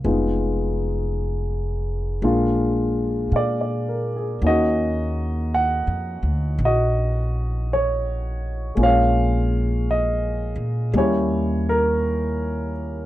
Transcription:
0.04 F1 G#3 B3 D#4 F4
2.22 A#1 G#3 A#3 D4 F4
3.32 A#2 F5
3.36 D5
3.61 D5
3.89 A#4
4.16 G#4
4.42 D#2 A#3 C#4 D#4 F#4
4.47 F#4 D#5
5.54 F#5
5.87 F2
6.23 D2
6.59 A#1
6.65 F#4 D#5
7.73 C#5
8.75 A#1 G#3 A#3 C#4
8.80 F4 C#5 F5
9.91 D#5
10.56 A#2
10.93 D#2 G3 A#3 C#4
10.98 E4 G4 C#5
11.69 A#4

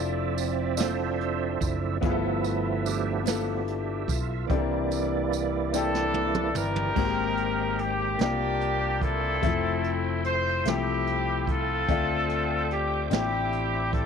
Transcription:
Already playing: F1 F3 C4 D4 E4 F4 A4 C5 D5 E5
0.36 D5, closed hi-hat, tambourine
0.77 D4 E4 F4 A4 C5 D5, snare, closed hi-hat, tambourine
1.21 closed hi-hat
1.60 F#1 F3 C4 E4, kick, closed hi-hat, tambourine
2.01 G1 G2 F3 A3 B3 E4 F4 E5, kick, closed hi-hat
2.05 G#4
2.11 A4
2.44 closed hi-hat, tambourine
2.84 B3 D4 G4, closed hi-hat, tambourine
3.24 F3 A3 B3 E4 F4, closed hi-hat, tambourine
3.28 A4, snare
3.68 closed hi-hat
4.08 B1 F4, kick, closed hi-hat, tambourine
4.47 C2 E3 G3 A#3 C4 E4 D5, kick, closed hi-hat
4.51 C3 D4 E4 A4
4.59 A#4
4.91 closed hi-hat, tambourine
5.32 closed hi-hat, tambourine
5.73 C4 D4 E4 G4 A4, snare, tambourine
5.95 snare
6.14 high tom
6.35 mid tom
6.55 G1 D#4 G4 A#4, mid tom, tambourine
6.76 floor tom
6.94 G#1 G#2 G#3 A#3 C4 C5 G5 A#5, kick, crash
6.99 F#4
7.06 G4
7.37 closed hi-hat
7.79 G4, closed hi-hat
8.17 C2 C3 A#3 C4 D4 D5 G5 C6, snare, closed hi-hat
8.21 A#3 D4 F4 G4
8.61 closed hi-hat
9.01 C4 E4 A4, kick, closed hi-hat
9.41 F1 A3 C4 E4 A4 E5, kick, closed hi-hat
9.46 F3
9.84 closed hi-hat
10.24 C5, closed hi-hat
10.65 C2 A3 C4 E4 G4, snare, closed hi-hat
10.69 F3
11.07 closed hi-hat
11.47 C4 F4 A4, kick, closed hi-hat
11.87 D2 D3 C4 D4 C5 E5 D6, kick, closed hi-hat
11.92 F4
12.29 closed hi-hat
12.71 G4, closed hi-hat
13.10 A1 C4 D4 E4 G4, snare, closed hi-hat
13.52 closed hi-hat
13.93 D4 E4 A4, kick, closed hi-hat

